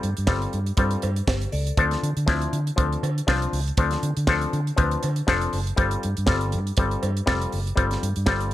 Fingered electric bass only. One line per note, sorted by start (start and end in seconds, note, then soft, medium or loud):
0.04 0.13 G2 medium
0.18 0.30 G2 medium
0.28 0.45 G1 medium
0.54 0.70 G2 loud
0.78 0.95 G2 medium
1.04 1.20 G2 loud
1.28 1.45 G1 medium
1.53 1.70 C#2 medium
1.78 1.95 D2 loud
2.03 2.12 D3 loud
2.17 2.24 D3 loud
2.28 2.45 D2 medium
2.53 2.70 D3 medium
2.78 2.95 D2 medium
3.03 3.20 D3 medium
3.29 3.45 C2 medium
3.53 3.70 C#2 medium
3.78 3.95 D2 medium
4.03 4.12 D3 medium
4.17 4.24 D3 medium
4.28 4.45 D2 medium
4.53 4.70 D3 medium
4.78 4.95 D2 medium
5.04 5.20 D3 loud
5.28 5.45 F1 medium
5.53 5.70 F#1 medium
5.78 5.95 G1 loud
6.05 6.14 G2 loud
6.18 6.30 G2 medium
6.28 6.55 G1 loud
6.54 6.70 G2 medium
6.78 6.95 G1 loud
7.03 7.20 G2 loud
7.28 7.45 F1 medium
7.53 7.70 F#1 medium
7.78 7.95 G1 medium
8.03 8.12 G2 medium
8.17 8.24 G2 medium
8.27 8.54 G1 medium